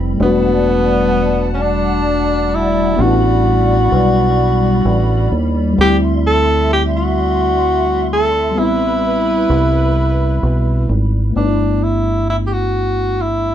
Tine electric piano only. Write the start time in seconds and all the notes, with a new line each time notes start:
Already playing: G3 C4 E4 B4
0.14 G3 A3
0.21 D4 F#4
2.93 G3 B3
3.00 D4 E4
5.73 G3 A3
5.80 C4 E4
8.51 G3 B3
8.59 C4 E4
11.30 A3 B3
11.37 D4 D#4
11.47 E4